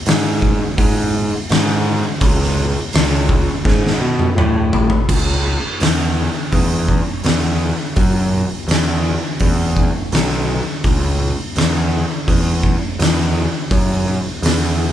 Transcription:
0.06 0.58 G#2 medium
0.06 snare loud
0.06 open hi-hat medium
0.42 kick medium
0.78 1.30 G#2 medium
0.78 kick loud
0.78 open hi-hat medium
1.49 2.02 G#2 medium
1.49 snare loud
1.49 open hi-hat medium
2.21 2.73 C#2 loud
2.21 kick loud
2.21 open hi-hat medium
2.42 snare soft
2.93 3.45 C#2 medium
2.93 snare loud
2.93 open hi-hat medium
3.29 kick medium
3.65 3.91 G#2 loud
3.65 kick loud
3.65 snare medium
3.87 snare medium
4.01 4.27 B2 medium
4.19 high tom medium
4.36 4.88 A2 medium
4.36 mid tom loud
4.73 floor tom loud
4.90 floor tom loud
5.09 5.56 C#2 loud
5.09 kick loud
5.09 crash loud
5.80 6.28 E2 medium
5.80 snare loud
5.80 open hi-hat medium
6.52 6.99 E2 medium
6.52 kick medium
6.52 open hi-hat medium
6.88 kick medium
7.24 7.71 E2 medium
7.24 snare loud
7.24 open hi-hat medium
7.96 8.43 F#2 loud
7.96 kick loud
7.96 open hi-hat medium
8.68 9.15 E2 medium
8.68 snare loud
8.68 open hi-hat medium
9.40 9.87 E2 medium
9.40 kick medium
9.40 open hi-hat medium
9.77 kick medium
10.12 10.59 B1 loud
10.12 snare loud
10.12 open hi-hat medium
10.84 11.31 C#2 medium
10.84 kick loud
10.84 open hi-hat medium
11.56 12.03 E2 medium
11.56 snare loud
11.56 open hi-hat medium
12.28 12.74 E2 medium
12.28 kick medium
12.28 open hi-hat medium
12.63 kick medium
12.99 13.46 E2 loud
12.99 snare loud
12.99 open hi-hat medium
13.71 14.18 F#2 loud
13.71 kick loud
13.71 open hi-hat medium
14.42 14.89 E2 medium
14.42 snare loud
14.42 open hi-hat medium

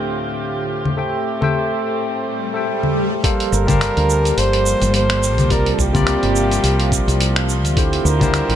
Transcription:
0.00 0.96 D2 medium
0.00 3.20 A2 medium
0.00 0.99 D3 medium
0.00 0.97 A3 medium
0.00 0.96 C4 medium
0.00 0.93 F4 medium
0.00 1.00 G4 medium
0.00 3.20 G4 medium
0.00 0.98 C5 medium
0.00 0.98 E5 medium
0.00 1.00 F5 medium
0.00 3.26 G5 medium
0.00 3.26 G6 medium
0.85 low conga soft
0.97 1.38 A3 medium
0.97 3.22 A3 medium
0.97 3.22 C4 medium
0.97 1.38 A4 medium
0.97 1.38 C5 medium
0.97 1.38 E5 medium
0.97 1.39 G5 medium
1.41 2.51 A3 medium
1.41 2.52 A4 medium
1.41 2.52 C5 medium
1.41 2.53 E5 medium
1.41 2.53 G5 medium
1.41 low conga medium
2.11 swell medium
2.53 3.20 A3 medium
2.53 3.20 A4 medium
2.53 3.21 C5 medium
2.53 3.21 E5 medium
2.53 3.22 G5 medium
2.83 low conga soft
3.23 8.55 F3 medium
3.23 3.64 G3 medium
3.23 7.73 G3 medium
3.23 7.73 A#3 medium
3.23 3.64 G4 medium
3.23 3.65 A4 medium
3.23 3.65 A#4 medium
3.23 3.65 C5 medium
3.23 3.65 F5 medium
3.23 kick loud
3.23 closed hi-hat medium
3.23 shaker soft
3.40 closed hi-hat soft
3.52 3.89 G1 loud
3.52 4.40 A#4 loud
3.52 shaker medium
3.67 5.47 G3 medium
3.67 5.47 G4 medium
3.67 5.48 A#4 medium
3.67 5.48 C5 medium
3.67 5.48 F5 medium
3.67 5.47 A5 medium
3.67 kick loud
3.67 closed hi-hat soft
3.67 low conga medium
3.67 shaker soft
3.81 finger snap medium
3.81 closed hi-hat medium
3.81 shaker soft
3.97 4.31 D2 medium
3.97 closed hi-hat soft
4.10 shaker medium
4.25 closed hi-hat soft
4.25 shaker soft
4.37 4.74 G1 medium
4.37 4.94 C5 loud
4.37 closed hi-hat medium
4.37 shaker soft
4.53 closed hi-hat soft
4.66 shaker medium
4.82 5.39 G1 loud
4.82 closed hi-hat soft
4.82 shaker soft
4.94 5.53 C5 loud
4.94 closed hi-hat medium
4.94 shaker soft
5.10 finger snap medium
5.10 closed hi-hat soft
5.23 shaker medium
5.38 5.73 C2 medium
5.38 closed hi-hat soft
5.38 low conga medium
5.38 shaker soft
5.50 5.91 C3 medium
5.50 7.75 C3 medium
5.50 5.91 G3 medium
5.50 5.91 F4 medium
5.50 5.91 A#4 medium
5.50 5.76 A#4 loud
5.50 5.92 D5 medium
5.50 kick loud
5.50 closed hi-hat medium
5.50 shaker soft
5.66 closed hi-hat soft
5.74 5.82 A4 medium
5.79 6.15 C2 loud
5.79 7.49 G4 loud
5.79 kick medium
5.79 shaker medium
5.93 7.73 C3 medium
5.93 7.73 G3 medium
5.93 7.74 F4 medium
5.93 7.74 A#4 medium
5.93 7.75 D5 loud
5.93 kick loud
5.93 closed hi-hat soft
5.93 low conga medium
5.93 shaker soft
6.07 finger snap medium
6.07 closed hi-hat medium
6.07 shaker soft
6.23 6.58 G1 medium
6.23 closed hi-hat soft
6.36 shaker medium
6.51 closed hi-hat soft
6.51 shaker soft
6.64 7.00 C2 medium
6.64 closed hi-hat medium
6.64 shaker soft
6.80 closed hi-hat soft
6.92 kick loud
6.92 shaker medium
7.08 7.64 C2 loud
7.08 closed hi-hat soft
7.08 shaker soft
7.21 closed hi-hat medium
7.21 shaker soft
7.36 finger snap medium
7.36 closed hi-hat soft
7.49 shaker medium
7.64 7.99 D2 medium
7.64 closed hi-hat soft
7.64 shaker soft
7.76 8.55 D3 medium
7.76 8.17 D3 medium
7.76 8.17 A3 medium
7.76 8.55 C4 medium
7.76 8.18 E4 medium
7.76 8.18 F4 medium
7.76 8.55 G4 medium
7.76 8.18 G4 medium
7.76 8.18 C5 medium
7.76 8.55 E5 medium
7.76 kick loud
7.76 closed hi-hat medium
7.76 shaker soft
7.93 closed hi-hat soft
8.05 8.41 D2 loud
8.05 8.55 A#4 loud
8.05 shaker medium
8.19 8.55 D3 medium
8.19 8.55 G3 medium
8.19 8.55 E4 medium
8.19 8.55 F4 medium
8.19 8.55 G4 medium
8.19 8.55 C5 loud
8.19 kick loud
8.19 closed hi-hat soft
8.19 low conga medium
8.19 shaker soft
8.34 finger snap medium
8.34 closed hi-hat medium
8.34 shaker soft
8.49 8.55 A1 medium
8.49 closed hi-hat soft

